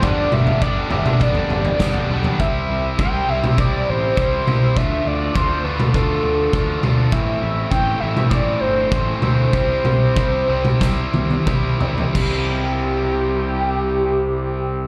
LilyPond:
<<
  \new Staff \with { instrumentName = "Analog synth lead" } { \time 4/4 \key c \major \tempo 4 = 102 d''8 e''8 d''8 e''8 d''4. r8 | e''4 g''8 e''8 d''8 c''8 c''4 | e''8 d''8 c''8 b'8 a'4. r8 | e''4 g''8 e''8 d''8 c''4 c''8~ |
c''2. r4 | g'1 | }
  \new Staff \with { instrumentName = "Overdriven electric guitar" } { \time 4/4 \key c \major <g b d'>4 <g b d'>8 <g b d'>8 <g b d'>4 <g b d'>8 <g b d'>8 | r1 | r1 | r1 |
r1 | r1 | }
  \new Staff \with { instrumentName = "Overdriven electric guitar" } { \time 4/4 \key c \major <g, d g b d'>4 <g, d g b d'>8 <g, d g b d'>8 <g, d g b d'>4 <g, d g b d'>8 <g, d g b d'>8 | <c g c' e'>4 <c g c' e'>8 <c g c' e'>8 <c g c' e'>4 <c g c' e'>8 <c g c' e'>8 | <d a d' f'>4 <d a d' f'>8 <d a d' f'>8 <d a d' f'>4 <d a d' f'>8 <d a d' f'>8 | <a, e a c' e'>4 <a, e a c' e'>8 <a, e a c' e'>8 <a, e a c' e'>4 <a, e a c' e'>8 <a, e a c' e'>8 |
<c g c' e'>4 <c g c' e'>8 <c g c' e'>8 <c g c' e'>4 <c g c' e'>8 <c g c' e'>8 | <c g c' e'>1 | }
  \new Staff \with { instrumentName = "Picked electric bass" } { \clef bass \time 4/4 \key c \major g,,8 g,,8 g,,8 g,,8 g,,8 g,,8 g,,8 b,,8 | c,8 c,8 c,8 c,8 c,8 a,,8 c,8 c,8 | d,8 d,8 d,8 d,8 d,8 d,8 d,8 d,8 | a,,8 a,,8 a,,8 a,,8 a,,8 g,,8 a,,8 d,8 |
c,8 c,8 c,8 c,8 c,8 c,8 c,8 c,8 | c,1 | }
  \new DrumStaff \with { instrumentName = "Drums" } \drummode { \time 4/4 <bd tomfh>8 toml16 tomfh16 bd8 tomfh16 toml16 <bd tomfh>16 tomfh16 tomfh16 tomfh16 <bd sn toml>16 tomfh8 tomfh16 | bd4 bd8. toml16 bd4 bd8 toml8 | bd4 bd8. toml16 bd4 bd8 toml8 | bd4 bd8. toml16 bd4 bd8 toml8 |
bd8 toml8 bd8. toml16 <bd sn>8 tommh16 tommh16 <bd toml>8 tomfh16 tomfh16 | <cymc bd>4 r4 r4 r4 | }
>>